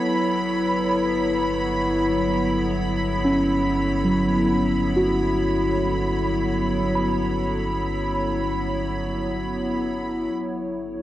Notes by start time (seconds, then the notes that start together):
Already playing: F#3 B3 E4 A4 B4 C#5 B5
0.05 G1
3.25 C#4
4.05 F#3
4.96 F#4
6.95 B5
10.31 G1 F#3
10.66 B3